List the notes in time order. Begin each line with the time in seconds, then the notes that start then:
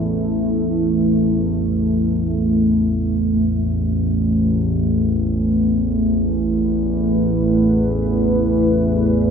Already playing: A1 E2 A3 E4 B4
3.35 A1 E2 A3
4.59 B4
5.42 E4